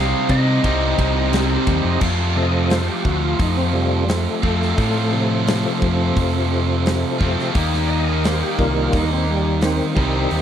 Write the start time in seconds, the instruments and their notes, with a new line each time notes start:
Already playing: fingered electric bass C2, distorted electric guitar C3 G3 C4, overdriven electric guitar C3 G3 C4 D#4, tonewheel organ C4 D#4 G4 D#5, lead electric guitar F5
0.29 distorted electric guitar C3 G3 C4, fingered electric bass C3, lead electric guitar D#5, kick, ride
0.63 fingered electric bass C2, overdriven electric guitar C3 G3 C4 D#4, distorted electric guitar C3 G3 C4, tonewheel organ C4 D#4 G4 D#5, kick, ride
0.97 fingered electric bass C2, distorted electric guitar C3 G3 C4, kick, ride
1.32 distorted electric guitar C3 G3 C4, snare, ride
1.67 fingered electric bass D#2, distorted electric guitar C3 G3 C4, kick, ride
1.84 fingered electric bass F2
2.00 overdriven electric guitar F2 C3 F3 A3 C4, fingered electric bass F2, distorted electric guitar F4, kick, crash
2.33 tonewheel organ C3 F3 A3 D5
2.38 tonewheel organ D#5
2.70 tonewheel organ C5, snare, open hi-hat
2.89 tonewheel organ G4
3.05 fingered electric bass D2, tonewheel organ F#4, kick
3.24 tonewheel organ F4
3.40 fingered electric bass F2, tonewheel organ D#4, kick, open hi-hat
3.57 tonewheel organ C4
3.73 tonewheel organ C3 F3 G3 A3
4.09 tonewheel organ A3, snare, open hi-hat
4.42 fingered electric bass F2, overdriven electric guitar C3 F3 A3 C4, distorted electric guitar F4, kick
4.46 overdriven electric guitar F2
4.62 snare
4.77 overdriven electric guitar F2 C3 F3 A3, fingered electric bass A2, distorted electric guitar F4, kick, open hi-hat
4.81 overdriven electric guitar C4
5.13 tonewheel organ C3 F3 A3
5.47 snare, open hi-hat
5.82 fingered electric bass F2, kick
6.16 fingered electric bass F2, kick, open hi-hat
6.86 snare, open hi-hat
7.18 fingered electric bass F2, overdriven electric guitar F3 A3 C4, distorted electric guitar F4, kick
7.23 overdriven electric guitar F2 C3
7.39 snare
7.54 fingered electric bass D#2, overdriven electric guitar D#3 G3 A#3 D#4, kick, open hi-hat
7.58 distorted electric guitar G4
7.74 snare
7.87 tonewheel organ D5
7.92 tonewheel organ D#5
8.24 tonewheel organ C5, snare, open hi-hat
8.43 tonewheel organ G4
8.58 fingered electric bass C2, tonewheel organ D#3 G3 A#3 F4, kick
8.79 tonewheel organ F4
8.93 fingered electric bass D#2, tonewheel organ D#4, kick, open hi-hat
9.13 tonewheel organ C4
9.30 tonewheel organ G3
9.61 tonewheel organ D#3 C4, snare, open hi-hat
9.95 fingered electric bass C2, overdriven electric guitar C3 G3, tonewheel organ D#3 G3 C4, distorted electric guitar D#3, kick
9.99 overdriven electric guitar C4 D#4, distorted electric guitar G4
10.31 fingered electric bass D#2, open hi-hat